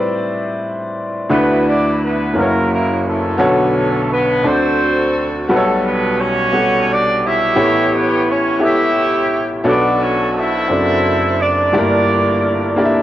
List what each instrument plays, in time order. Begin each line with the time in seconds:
Already playing: upright piano A2 G3 C4 B4 C5 D5 E5
1.29 upright piano D2 D3 A3 D4 E4 F#4 B4, horn section B3 E4 F#4 B4
1.67 horn section D4 D5
2.03 horn section B3 B4
2.34 upright piano F#1 F#2 A#3 C#4 E4 F#4 B4, horn section A#3 C#4 E4 A#4
2.42 upright piano C#5
2.71 horn section A#3 A#4
3.06 horn section A3 C#4 D4 A4
3.38 upright piano B1 B2 D3 B3 F#4 A4 C#5
3.76 horn section A3 A4
4.12 horn section B3 B4
4.43 upright piano D2 D3 C4 D4 F#4 A4 D5, horn section C4 F#4 A4 C5
5.49 upright piano B1 B2 G3 B3 F#4 A4 B4, horn section A3 C#4 F#4 A4
5.57 upright piano C#5
5.86 horn section B3 B4
6.19 horn section C#4 F#4 G4 C#5
6.52 upright piano G3 B3 A4 B4 F#5
6.91 horn section D4 D5
7.25 horn section E4 G4 C#5 E5
7.55 upright piano A1 A2 B3 E4 G4 A4 C#5
7.94 horn section B3 B4
8.30 horn section C#4 C#5
8.59 upright piano B3 E4 G4 A4 E5, horn section G4 C#5
8.63 horn section E4 E5
9.64 upright piano B1 B2 B3 D4 F#4 A4 C#5, horn section D4 F#4 A4 D5
9.72 upright piano B4
10.02 horn section C#4 C#5
10.36 horn section E4 A4 C5 E5
10.68 upright piano F#1 F#2 C4 D4 F#4 A4 D5
11.40 horn section D4 D5
11.72 upright piano G1 G2 A3 D4 E4 G4 D5, horn section D4 A#4 D5
11.78 upright piano A#3
12.76 upright piano A#3 D4 E4 G4 D5
12.85 upright piano E5